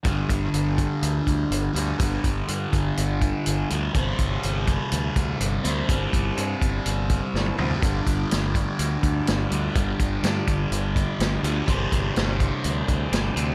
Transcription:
<<
  \new Staff \with { instrumentName = "Tonewheel organ" } { \time 4/4 \key g \major \tempo 4 = 124 << { r1 | r1 | r1 | r1 |
d''1~ | d''1~ | d''1 | } \\ { r1 | r1 | r1 | r1 |
<g d' f' b'>1~ | <g d' f' b'>1 | <g c' c''>1 | } >> }
  \new Staff \with { instrumentName = "Distorted electric guitar" } { \clef bass \time 4/4 \key g \major <g, d g>2.~ <g, d g>8 <g, d g>8 | <g, d g>2.~ <g, d g>8 <g, d g>8 | <c g c'>2.~ <c g c'>8 <c g c'>8 | <c g c'>2.~ <c g c'>8 <c g c'>8 |
<g, d g>2.~ <g, d g>8 <g, d g>8 | <g, d g>2.~ <g, d g>8 <g, d g>8 | <c g c'>2.~ <c g c'>8 <c g c'>8 | }
  \new Staff \with { instrumentName = "Fingered electric bass" } { \clef bass \time 4/4 \key g \major g,,8 g,,8 g,,4 d,8 d,8 g,,8 d,8 | g,,8 g,,8 g,8 g,,8 g,,4 g,,8 d,8 | g,,8 g,,8 g,,4 d,8 d,8 g,,8 d,8 | g,,8 g,,8 g,8 g,,8 g,,4 g,,8 d,8 |
g,,8 g,,8 g,,4 d,8 d,8 g,,8 d,8 | g,,8 g,,8 g,8 g,,8 g,,4 g,,8 d,8 | g,,8 g,,8 g,,4 d,8 d,8 g,,8 d,8 | }
  \new DrumStaff \with { instrumentName = "Drums" } \drummode { \time 4/4 <hh bd>8 <hh bd>8 hh8 <hh bd>8 hh8 <hh bd>8 hh8 hh8 | <hh bd>8 <hh bd>8 hh8 <hh bd>8 hh8 <hh bd>8 hh8 hh8 | <hh bd>8 <hh bd>8 hh8 <hh bd>8 hh8 <hh bd>8 hh8 hh8 | <hh bd>8 <hh bd>8 hh8 <hh bd>8 hh8 <hh bd>8 sn16 tommh16 toml16 tomfh16 |
<hh bd>8 <hh bd>8 <hh sn>8 <hh bd>8 hh8 <hh bd>8 <hh sn>8 hh8 | <hh bd>8 <hh bd>8 <hh sn>8 <hh bd>8 hh8 <hh bd>8 <hh sn>8 hh8 | <hh bd>8 <hh bd>8 <hh sn>8 <hh bd>8 hh8 <hh bd>8 <hh sn>8 hh8 | }
>>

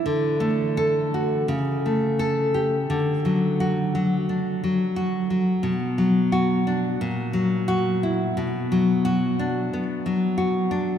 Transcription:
\new Staff \with { instrumentName = "Nylon-string guitar" } { \time 4/4 \key d \major \tempo 4 = 87 << { r4 a'4 r4 a'4 | r4 fis'4 r2 | r4 fis'4 r4 fis'4 | r4 fis'4 r2 | } \\ { d8 a4 fis'8 cis8 a4 g'8 | d8 fis4 fis8 d'8 fis8 fis'8 fis8 | b,8 fis4 d'8 ais,8 fis4 e'8 | b,8 fis4 d'8 b8 fis8 fis'8 d'8 | } >> }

